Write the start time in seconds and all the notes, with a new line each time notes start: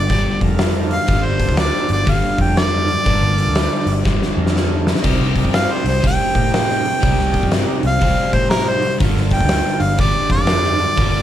Already playing: G3 D5
0.09 G1 G2 D3 G3, kick, open hi-hat
0.41 F2 D4 F4 A4 A#4, kick, open hi-hat
0.59 snare, open hi-hat
0.91 F5, open hi-hat
1.06 G1 G2 D3 G3 D4 F4 A4 A#4, kick, open hi-hat
1.24 G1 C5
1.40 kick, open hi-hat
1.48 D2, kick
1.57 D5, snare, open hi-hat
1.89 G1 D5, open hi-hat
2.05 G1 G2 D3 G3, kick, open hi-hat
2.10 F5
2.37 F2 D4 F4 A4 A#4 G5, kick, open hi-hat
2.57 D5, snare, open hi-hat
2.88 open hi-hat
3.04 G1 G2 D3 D4 F4 A4, kick, open hi-hat
3.08 G3 A#4
3.21 G1
3.38 open hi-hat
3.46 D2
3.55 snare, open hi-hat
3.86 G1, open hi-hat
4.03 G1 G2 D3 G3, kick, snare
4.22 snare
4.36 F2 D4 F4 A4 A#4
4.47 snare
4.56 snare
4.87 snare
4.95 snare
5.01 C2 C3 D#4 G4 A#4 D5, kick, open hi-hat, crash
5.05 G3 C4
5.20 C2
5.35 kick, open hi-hat
5.45 G2, kick
5.54 F5, snare, open hi-hat
5.72 C5
5.84 C2 C5, open hi-hat
6.01 C2 C3 G3 C4, kick, open hi-hat
6.07 G5
6.34 A2 D#4 G4 A#4 C5, kick, open hi-hat
6.54 G5, snare, open hi-hat
6.70 snare
6.85 open hi-hat
7.00 C2 C3 G3 C4 D#4 G4 A#4 D5, kick, open hi-hat
7.18 C2, snare
7.34 kick, open hi-hat
7.43 G2, kick
7.51 snare, open hi-hat
7.83 C2, open hi-hat
7.87 F5
8.00 C2 C3 G3 C4, kick, open hi-hat
8.33 A2 D#4 G4 A#4 C5, kick, open hi-hat
8.50 A#4, snare, open hi-hat
8.69 C5
8.82 open hi-hat
8.99 G1 G2 D3 G3, kick, open hi-hat
9.03 F4 A4 A#4 D5
9.15 G1, snare
9.30 G5, kick, open hi-hat
9.40 D2, kick
9.49 snare, open hi-hat
9.80 G1 F5, open hi-hat
9.98 G1 G2 D3 G3 D5, kick, open hi-hat
10.29 F2 F4 A#4 D5, kick, open hi-hat
10.33 A4 D5
10.47 snare, open hi-hat
10.64 snare
10.79 open hi-hat
10.96 G1 G2 D3 G3 F4 A4 A#4 D5, kick, open hi-hat
11.12 G1